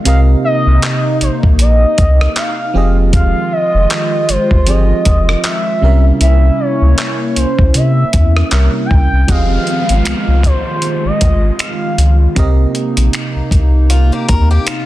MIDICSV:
0, 0, Header, 1, 8, 480
1, 0, Start_track
1, 0, Key_signature, -4, "minor"
1, 0, Tempo, 769231
1, 34, Time_signature, 4, 2, 24, 8
1, 9271, End_track
2, 0, Start_track
2, 0, Title_t, "Soft synth lead"
2, 0, Program_c, 0, 80
2, 40, Note_on_c, 0, 77, 110
2, 127, Note_off_c, 0, 77, 0
2, 278, Note_on_c, 0, 75, 111
2, 731, Note_off_c, 0, 75, 0
2, 761, Note_on_c, 0, 72, 93
2, 848, Note_off_c, 0, 72, 0
2, 1001, Note_on_c, 0, 75, 110
2, 1479, Note_on_c, 0, 77, 106
2, 1488, Note_off_c, 0, 75, 0
2, 1856, Note_off_c, 0, 77, 0
2, 1959, Note_on_c, 0, 77, 113
2, 2198, Note_on_c, 0, 75, 102
2, 2207, Note_off_c, 0, 77, 0
2, 2678, Note_on_c, 0, 72, 98
2, 2687, Note_off_c, 0, 75, 0
2, 2920, Note_on_c, 0, 75, 100
2, 2929, Note_off_c, 0, 72, 0
2, 3401, Note_on_c, 0, 76, 106
2, 3410, Note_off_c, 0, 75, 0
2, 3777, Note_off_c, 0, 76, 0
2, 3879, Note_on_c, 0, 76, 101
2, 4117, Note_on_c, 0, 73, 99
2, 4126, Note_off_c, 0, 76, 0
2, 4597, Note_on_c, 0, 72, 91
2, 4607, Note_off_c, 0, 73, 0
2, 4836, Note_off_c, 0, 72, 0
2, 4839, Note_on_c, 0, 76, 95
2, 5292, Note_off_c, 0, 76, 0
2, 5521, Note_on_c, 0, 80, 78
2, 5559, Note_on_c, 0, 79, 106
2, 5568, Note_off_c, 0, 80, 0
2, 5799, Note_on_c, 0, 77, 112
2, 5808, Note_off_c, 0, 79, 0
2, 6176, Note_off_c, 0, 77, 0
2, 6179, Note_on_c, 0, 77, 102
2, 6522, Note_on_c, 0, 72, 103
2, 6532, Note_off_c, 0, 77, 0
2, 6902, Note_on_c, 0, 75, 105
2, 6912, Note_off_c, 0, 72, 0
2, 7238, Note_off_c, 0, 75, 0
2, 7245, Note_on_c, 0, 77, 85
2, 7594, Note_off_c, 0, 77, 0
2, 9271, End_track
3, 0, Start_track
3, 0, Title_t, "FM electric piano"
3, 0, Program_c, 1, 5
3, 0, Control_c, 1, 64, 127
3, 26, Note_on_c, 1, 48, 68
3, 33, Note_on_c, 1, 60, 61
3, 38, Note_on_c, 1, 67, 59
3, 43, Control_c, 1, 64, 0
3, 45, Note_on_c, 1, 70, 61
3, 51, Note_on_c, 1, 75, 70
3, 156, Control_c, 1, 64, 127
3, 1685, Note_off_c, 1, 48, 0
3, 1689, Note_off_c, 1, 60, 0
3, 1691, Note_off_c, 1, 67, 0
3, 1695, Note_off_c, 1, 70, 0
3, 1698, Note_off_c, 1, 75, 0
3, 1707, Note_on_c, 1, 53, 66
3, 1712, Note_on_c, 1, 60, 60
3, 1719, Note_on_c, 1, 67, 61
3, 1723, Control_c, 1, 64, 0
3, 1725, Note_on_c, 1, 68, 60
3, 1731, Note_on_c, 1, 75, 73
3, 1845, Control_c, 1, 64, 127
3, 2886, Note_off_c, 1, 53, 0
3, 2889, Note_off_c, 1, 60, 0
3, 2892, Note_off_c, 1, 67, 0
3, 2896, Note_off_c, 1, 68, 0
3, 2899, Note_off_c, 1, 75, 0
3, 2913, Note_on_c, 1, 53, 55
3, 2915, Note_on_c, 1, 60, 50
3, 2919, Note_on_c, 1, 67, 49
3, 2922, Note_on_c, 1, 68, 50
3, 2926, Note_on_c, 1, 72, 57
3, 3627, Note_on_c, 1, 48, 68
3, 3633, Note_on_c, 1, 55, 63
3, 3634, Note_off_c, 1, 53, 0
3, 3635, Note_off_c, 1, 60, 0
3, 3636, Note_off_c, 1, 67, 0
3, 3638, Note_off_c, 1, 68, 0
3, 3640, Note_off_c, 1, 72, 0
3, 3640, Note_on_c, 1, 61, 62
3, 3642, Control_c, 1, 64, 0
3, 3646, Note_on_c, 1, 70, 61
3, 3652, Note_on_c, 1, 76, 73
3, 3760, Control_c, 1, 64, 127
3, 5286, Note_off_c, 1, 48, 0
3, 5289, Note_off_c, 1, 55, 0
3, 5292, Note_off_c, 1, 61, 0
3, 5295, Note_off_c, 1, 70, 0
3, 5298, Note_off_c, 1, 76, 0
3, 5314, Note_on_c, 1, 48, 52
3, 5317, Note_on_c, 1, 55, 44
3, 5321, Note_on_c, 1, 61, 45
3, 5323, Note_on_c, 1, 70, 46
3, 5326, Note_on_c, 1, 76, 55
3, 5788, Note_on_c, 1, 53, 63
3, 5794, Note_off_c, 1, 48, 0
3, 5794, Note_on_c, 1, 60, 54
3, 5796, Note_off_c, 1, 55, 0
3, 5797, Note_off_c, 1, 61, 0
3, 5798, Note_off_c, 1, 70, 0
3, 5800, Note_off_c, 1, 76, 0
3, 5801, Note_on_c, 1, 67, 59
3, 5803, Control_c, 1, 64, 0
3, 5807, Note_on_c, 1, 68, 54
3, 5813, Note_on_c, 1, 75, 68
3, 5911, Control_c, 1, 64, 127
3, 7686, Note_off_c, 1, 53, 0
3, 7689, Note_off_c, 1, 60, 0
3, 7692, Note_off_c, 1, 67, 0
3, 7695, Note_off_c, 1, 68, 0
3, 7699, Note_off_c, 1, 75, 0
3, 7708, Note_on_c, 1, 48, 71
3, 7713, Note_on_c, 1, 60, 71
3, 7720, Note_on_c, 1, 67, 68
3, 7722, Control_c, 1, 64, 0
3, 7726, Note_on_c, 1, 70, 73
3, 7733, Note_on_c, 1, 75, 82
3, 7850, Control_c, 1, 64, 127
3, 9271, Note_off_c, 1, 48, 0
3, 9271, Note_off_c, 1, 60, 0
3, 9271, Note_off_c, 1, 67, 0
3, 9271, Note_off_c, 1, 70, 0
3, 9271, Note_off_c, 1, 75, 0
3, 9271, End_track
4, 0, Start_track
4, 0, Title_t, "Steel-string acoustic guitar"
4, 0, Program_c, 2, 25
4, 8673, Note_on_c, 2, 65, 73
4, 8806, Note_off_c, 2, 65, 0
4, 8812, Note_on_c, 2, 67, 75
4, 8816, Note_on_c, 2, 58, 63
4, 8908, Note_off_c, 2, 67, 0
4, 8910, Note_off_c, 2, 58, 0
4, 8913, Note_on_c, 2, 70, 82
4, 9046, Note_off_c, 2, 70, 0
4, 9052, Note_on_c, 2, 67, 81
4, 9056, Note_on_c, 2, 58, 70
4, 9148, Note_off_c, 2, 67, 0
4, 9150, Note_off_c, 2, 58, 0
4, 9152, Note_on_c, 2, 65, 76
4, 9271, Note_off_c, 2, 65, 0
4, 9271, End_track
5, 0, Start_track
5, 0, Title_t, "Analog synth pad"
5, 0, Program_c, 3, 89
5, 33, Note_on_c, 3, 48, 88
5, 33, Note_on_c, 3, 63, 89
5, 34, Note_on_c, 3, 58, 74
5, 1697, Note_off_c, 3, 48, 0
5, 1697, Note_off_c, 3, 58, 0
5, 1697, Note_off_c, 3, 63, 0
5, 1713, Note_on_c, 3, 56, 74
5, 1714, Note_on_c, 3, 51, 82
5, 1715, Note_on_c, 3, 65, 92
5, 3614, Note_off_c, 3, 56, 0
5, 3615, Note_off_c, 3, 51, 0
5, 3615, Note_off_c, 3, 65, 0
5, 3632, Note_on_c, 3, 64, 90
5, 3633, Note_on_c, 3, 58, 77
5, 3633, Note_on_c, 3, 61, 81
5, 5771, Note_off_c, 3, 64, 0
5, 5772, Note_off_c, 3, 58, 0
5, 5772, Note_off_c, 3, 61, 0
5, 5794, Note_on_c, 3, 56, 75
5, 5794, Note_on_c, 3, 65, 93
5, 5795, Note_on_c, 3, 51, 83
5, 7695, Note_off_c, 3, 51, 0
5, 7695, Note_off_c, 3, 56, 0
5, 7695, Note_off_c, 3, 65, 0
5, 7714, Note_on_c, 3, 48, 85
5, 7714, Note_on_c, 3, 58, 77
5, 7714, Note_on_c, 3, 63, 91
5, 9271, Note_off_c, 3, 48, 0
5, 9271, Note_off_c, 3, 58, 0
5, 9271, Note_off_c, 3, 63, 0
5, 9271, End_track
6, 0, Start_track
6, 0, Title_t, "Sub bass"
6, 0, Program_c, 4, 38
6, 37, Note_on_c, 4, 36, 117
6, 220, Note_off_c, 4, 36, 0
6, 416, Note_on_c, 4, 36, 90
6, 492, Note_off_c, 4, 36, 0
6, 756, Note_on_c, 4, 34, 53
6, 811, Note_off_c, 4, 34, 0
6, 895, Note_on_c, 4, 34, 93
6, 1156, Note_off_c, 4, 34, 0
6, 1239, Note_on_c, 4, 36, 88
6, 1421, Note_off_c, 4, 36, 0
6, 1715, Note_on_c, 4, 29, 98
6, 2084, Note_off_c, 4, 29, 0
6, 2335, Note_on_c, 4, 29, 94
6, 2412, Note_off_c, 4, 29, 0
6, 2676, Note_on_c, 4, 31, 51
6, 2731, Note_off_c, 4, 31, 0
6, 2814, Note_on_c, 4, 31, 87
6, 3076, Note_off_c, 4, 31, 0
6, 3158, Note_on_c, 4, 29, 89
6, 3341, Note_off_c, 4, 29, 0
6, 3634, Note_on_c, 4, 36, 101
6, 3818, Note_off_c, 4, 36, 0
6, 3873, Note_on_c, 4, 36, 118
6, 4058, Note_off_c, 4, 36, 0
6, 4253, Note_on_c, 4, 37, 95
6, 4331, Note_off_c, 4, 37, 0
6, 4595, Note_on_c, 4, 36, 52
6, 4650, Note_off_c, 4, 36, 0
6, 4735, Note_on_c, 4, 36, 93
6, 4812, Note_off_c, 4, 36, 0
6, 4835, Note_on_c, 4, 48, 103
6, 5019, Note_off_c, 4, 48, 0
6, 5078, Note_on_c, 4, 40, 90
6, 5261, Note_off_c, 4, 40, 0
6, 5315, Note_on_c, 4, 36, 97
6, 5422, Note_off_c, 4, 36, 0
6, 5560, Note_on_c, 4, 37, 88
6, 5665, Note_off_c, 4, 37, 0
6, 5695, Note_on_c, 4, 36, 88
6, 5772, Note_off_c, 4, 36, 0
6, 5795, Note_on_c, 4, 29, 109
6, 5979, Note_off_c, 4, 29, 0
6, 6174, Note_on_c, 4, 32, 82
6, 6251, Note_off_c, 4, 32, 0
6, 6274, Note_on_c, 4, 36, 47
6, 6330, Note_off_c, 4, 36, 0
6, 6413, Note_on_c, 4, 36, 92
6, 6598, Note_off_c, 4, 36, 0
6, 6894, Note_on_c, 4, 32, 44
6, 6934, Note_off_c, 4, 32, 0
6, 6999, Note_on_c, 4, 32, 85
6, 7182, Note_off_c, 4, 32, 0
6, 7475, Note_on_c, 4, 37, 88
6, 7659, Note_off_c, 4, 37, 0
6, 7716, Note_on_c, 4, 36, 104
6, 7900, Note_off_c, 4, 36, 0
6, 8094, Note_on_c, 4, 34, 90
6, 8171, Note_off_c, 4, 34, 0
6, 8335, Note_on_c, 4, 36, 48
6, 8374, Note_off_c, 4, 36, 0
6, 8432, Note_on_c, 4, 36, 91
6, 8802, Note_off_c, 4, 36, 0
6, 8919, Note_on_c, 4, 39, 91
6, 9102, Note_off_c, 4, 39, 0
6, 9271, End_track
7, 0, Start_track
7, 0, Title_t, "Downlifter"
7, 0, Program_c, 5, 103
7, 5794, Note_on_c, 5, 60, 74
7, 9271, Note_off_c, 5, 60, 0
7, 9271, End_track
8, 0, Start_track
8, 0, Title_t, "Drums"
8, 34, Note_on_c, 9, 42, 75
8, 96, Note_off_c, 9, 42, 0
8, 515, Note_on_c, 9, 42, 68
8, 522, Note_on_c, 9, 39, 117
8, 577, Note_off_c, 9, 42, 0
8, 584, Note_off_c, 9, 39, 0
8, 756, Note_on_c, 9, 42, 64
8, 818, Note_off_c, 9, 42, 0
8, 894, Note_on_c, 9, 36, 89
8, 957, Note_off_c, 9, 36, 0
8, 992, Note_on_c, 9, 42, 71
8, 1054, Note_off_c, 9, 42, 0
8, 1235, Note_on_c, 9, 42, 67
8, 1238, Note_on_c, 9, 36, 101
8, 1297, Note_off_c, 9, 42, 0
8, 1300, Note_off_c, 9, 36, 0
8, 1380, Note_on_c, 9, 37, 97
8, 1443, Note_off_c, 9, 37, 0
8, 1472, Note_on_c, 9, 42, 73
8, 1478, Note_on_c, 9, 39, 109
8, 1534, Note_off_c, 9, 42, 0
8, 1540, Note_off_c, 9, 39, 0
8, 1953, Note_on_c, 9, 42, 78
8, 1954, Note_on_c, 9, 36, 123
8, 2016, Note_off_c, 9, 42, 0
8, 2017, Note_off_c, 9, 36, 0
8, 2434, Note_on_c, 9, 42, 68
8, 2442, Note_on_c, 9, 39, 112
8, 2497, Note_off_c, 9, 42, 0
8, 2504, Note_off_c, 9, 39, 0
8, 2675, Note_on_c, 9, 42, 64
8, 2738, Note_off_c, 9, 42, 0
8, 2813, Note_on_c, 9, 36, 92
8, 2876, Note_off_c, 9, 36, 0
8, 2911, Note_on_c, 9, 42, 75
8, 2974, Note_off_c, 9, 42, 0
8, 3154, Note_on_c, 9, 42, 68
8, 3157, Note_on_c, 9, 36, 100
8, 3216, Note_off_c, 9, 42, 0
8, 3219, Note_off_c, 9, 36, 0
8, 3300, Note_on_c, 9, 37, 96
8, 3363, Note_off_c, 9, 37, 0
8, 3393, Note_on_c, 9, 42, 79
8, 3398, Note_on_c, 9, 39, 111
8, 3455, Note_off_c, 9, 42, 0
8, 3461, Note_off_c, 9, 39, 0
8, 3873, Note_on_c, 9, 42, 74
8, 3936, Note_off_c, 9, 42, 0
8, 4354, Note_on_c, 9, 42, 71
8, 4361, Note_on_c, 9, 39, 114
8, 4416, Note_off_c, 9, 42, 0
8, 4424, Note_off_c, 9, 39, 0
8, 4595, Note_on_c, 9, 42, 66
8, 4658, Note_off_c, 9, 42, 0
8, 4734, Note_on_c, 9, 36, 87
8, 4796, Note_off_c, 9, 36, 0
8, 4831, Note_on_c, 9, 42, 72
8, 4893, Note_off_c, 9, 42, 0
8, 5074, Note_on_c, 9, 42, 69
8, 5077, Note_on_c, 9, 36, 99
8, 5136, Note_off_c, 9, 42, 0
8, 5140, Note_off_c, 9, 36, 0
8, 5220, Note_on_c, 9, 37, 91
8, 5282, Note_off_c, 9, 37, 0
8, 5311, Note_on_c, 9, 42, 77
8, 5317, Note_on_c, 9, 39, 114
8, 5373, Note_off_c, 9, 42, 0
8, 5379, Note_off_c, 9, 39, 0
8, 5558, Note_on_c, 9, 36, 93
8, 5621, Note_off_c, 9, 36, 0
8, 5793, Note_on_c, 9, 42, 68
8, 5794, Note_on_c, 9, 36, 109
8, 5855, Note_off_c, 9, 42, 0
8, 5857, Note_off_c, 9, 36, 0
8, 6033, Note_on_c, 9, 42, 40
8, 6096, Note_off_c, 9, 42, 0
8, 6173, Note_on_c, 9, 42, 67
8, 6235, Note_off_c, 9, 42, 0
8, 6274, Note_on_c, 9, 42, 64
8, 6281, Note_on_c, 9, 26, 108
8, 6336, Note_off_c, 9, 42, 0
8, 6344, Note_off_c, 9, 26, 0
8, 6511, Note_on_c, 9, 36, 88
8, 6516, Note_on_c, 9, 42, 65
8, 6573, Note_off_c, 9, 36, 0
8, 6578, Note_off_c, 9, 42, 0
8, 6751, Note_on_c, 9, 42, 66
8, 6813, Note_off_c, 9, 42, 0
8, 6995, Note_on_c, 9, 42, 71
8, 6998, Note_on_c, 9, 36, 99
8, 7057, Note_off_c, 9, 42, 0
8, 7060, Note_off_c, 9, 36, 0
8, 7234, Note_on_c, 9, 42, 74
8, 7240, Note_on_c, 9, 26, 102
8, 7296, Note_off_c, 9, 42, 0
8, 7302, Note_off_c, 9, 26, 0
8, 7478, Note_on_c, 9, 42, 65
8, 7540, Note_off_c, 9, 42, 0
8, 7715, Note_on_c, 9, 36, 113
8, 7715, Note_on_c, 9, 42, 69
8, 7777, Note_off_c, 9, 42, 0
8, 7778, Note_off_c, 9, 36, 0
8, 7955, Note_on_c, 9, 42, 40
8, 8017, Note_off_c, 9, 42, 0
8, 8094, Note_on_c, 9, 42, 68
8, 8156, Note_off_c, 9, 42, 0
8, 8195, Note_on_c, 9, 42, 65
8, 8203, Note_on_c, 9, 26, 109
8, 8258, Note_off_c, 9, 42, 0
8, 8265, Note_off_c, 9, 26, 0
8, 8431, Note_on_c, 9, 36, 88
8, 8437, Note_on_c, 9, 42, 66
8, 8494, Note_off_c, 9, 36, 0
8, 8499, Note_off_c, 9, 42, 0
8, 8673, Note_on_c, 9, 42, 71
8, 8735, Note_off_c, 9, 42, 0
8, 8914, Note_on_c, 9, 42, 74
8, 8918, Note_on_c, 9, 36, 90
8, 8977, Note_off_c, 9, 42, 0
8, 8980, Note_off_c, 9, 36, 0
8, 9152, Note_on_c, 9, 42, 77
8, 9158, Note_on_c, 9, 26, 101
8, 9214, Note_off_c, 9, 42, 0
8, 9220, Note_off_c, 9, 26, 0
8, 9271, End_track
0, 0, End_of_file